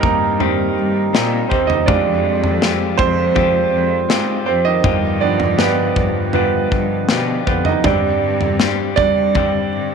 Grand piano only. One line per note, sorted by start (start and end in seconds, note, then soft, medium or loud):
0.00 0.41 G3 soft
0.00 0.42 C4 soft
0.00 0.41 D#4 medium
0.00 1.55 A#4 medium
0.00 1.67 D#5 medium
0.04 1.48 A#3 medium
0.41 0.74 G3 soft
0.41 0.74 C4 soft
0.41 0.74 D#4 soft
1.49 1.69 C4 medium
1.49 1.69 C5 medium
1.67 1.87 D#4 medium
1.67 1.88 D#5 medium
1.86 4.80 G3 soft
1.86 4.80 G#3 soft
1.86 2.59 D4 medium
1.86 4.81 F4 medium
1.86 2.57 D5 medium
2.98 3.69 C4 medium
2.98 3.68 C5 loud
4.46 4.65 C4 medium
4.46 4.66 C5 medium
4.65 5.19 D#3 medium
4.65 5.23 D#5 medium
5.21 7.81 F3 medium
5.21 5.59 B3 soft
5.21 5.57 D4 medium
5.21 5.60 D5 medium
5.58 6.31 B3 medium
5.58 6.32 B4 medium
6.34 7.44 B3 medium
6.34 7.45 B4 medium
7.47 7.65 B3 medium
7.47 7.66 B4 medium
7.65 7.85 D#4 medium
7.65 7.85 D#5 medium
7.84 8.94 G3 soft
7.84 8.94 C4 soft
7.84 8.57 D4 medium
7.84 8.56 D5 medium
8.96 9.69 D4 medium
8.96 9.68 D5 loud